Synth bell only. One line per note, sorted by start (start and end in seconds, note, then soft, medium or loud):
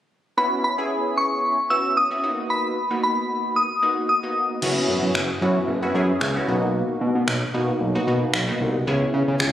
0.38 0.63 B5 medium
0.64 1.19 B5 medium
1.18 1.67 C#6 medium
1.70 1.98 E6 medium
1.97 2.46 D#6 medium
2.50 2.99 B5 medium
3.03 3.58 B5 medium
3.56 4.08 D#6 medium
4.09 4.47 D#6 medium